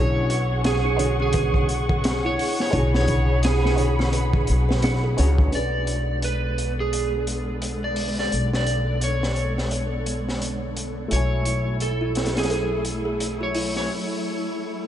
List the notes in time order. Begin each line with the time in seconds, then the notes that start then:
Already playing: B1 C#4 D4 E4 F#4 G#4 C#5 F#5 C#6
0.00 G#4
0.30 closed hi-hat
0.64 G#4, snare, closed hi-hat
0.85 D4
0.97 D3 C#5, closed hi-hat
1.02 F#4 G#4
1.20 C#4 G#4
1.33 B4, kick, closed hi-hat
1.54 kick
1.69 closed hi-hat
1.89 G#4, kick
2.04 snare, closed hi-hat
2.25 E4 C#5
2.39 D4, open hi-hat
2.60 C#5, snare
2.71 B1 D4 E4 C#5 B5, kick, closed hi-hat
2.76 F#4 G#4
2.95 C#5, snare
3.08 kick, closed hi-hat
3.43 G#4, snare, closed hi-hat
3.64 D4, snare
3.76 D3 C#5, closed hi-hat
3.81 F#4 G#4
3.99 C#4, snare
4.13 B4, closed hi-hat
4.33 kick
4.47 B1, closed hi-hat
4.69 B4, snare
4.82 D4, snare, closed hi-hat
5.04 G#4
5.17 C#2 D4 F#4 G#4 C#5, closed hi-hat
5.38 kick
5.50 D3 G#3 B3 D4, closed hi-hat
5.54 B1 G#4 B4 D5
5.87 closed hi-hat
6.22 B4, closed hi-hat
6.58 closed hi-hat
6.80 G#4
6.93 closed hi-hat
7.27 closed hi-hat
7.62 closed hi-hat
7.84 D5
7.96 open hi-hat
8.19 D5, snare
8.32 B1, closed hi-hat
8.53 D5, snare
8.66 closed hi-hat
9.01 C#5, closed hi-hat
9.23 snare
9.36 closed hi-hat
9.58 snare
9.71 closed hi-hat
10.06 closed hi-hat
10.29 snare
10.42 closed hi-hat
10.77 closed hi-hat
11.08 B1 F#3 A3 E4 F#4, closed hi-hat
11.13 F#4 C#5 G#5
11.45 closed hi-hat
11.80 A4, closed hi-hat
12.01 E4
12.15 snare, closed hi-hat
12.26 snare, closed hi-hat
12.36 C#4 G#4, snare, closed hi-hat
12.43 snare, closed hi-hat
12.50 A4, closed hi-hat
12.85 closed hi-hat
13.05 G#4
13.20 closed hi-hat
13.41 F#4 C#5
13.55 E4, open hi-hat
13.76 C#5, snare